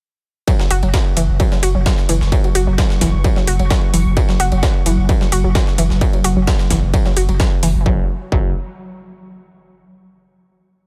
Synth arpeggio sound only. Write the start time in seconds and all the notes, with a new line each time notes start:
0.47 F#3
0.60 F#3
0.71 F#4
0.83 F#3
0.94 F#3
1.17 E3
1.40 F#3
1.52 F#3
1.63 F#4
1.75 F#3
1.86 F#3
2.09 E3
2.32 F#3
2.44 F#3
2.55 F#4
2.67 F#3
2.78 F#3
3.01 E3
3.24 F#3
3.36 F#3
3.47 F#4
3.59 F#3
3.70 F#3
3.94 E3
4.17 F#3
4.29 F#3
4.40 F#4
4.52 F#3
4.63 F#3
4.86 E3
5.09 F#3
5.21 F#3
5.32 F#4
5.44 F#3
5.55 F#3
5.78 E3
6.01 F#3
6.13 F#3
6.24 F#4
6.36 F#3
6.47 F#3
6.70 E3
6.94 F#3
7.06 F#3
7.17 F#4
7.29 F#3
7.40 F#3
7.63 E3
7.86 F#3
8.32 F#3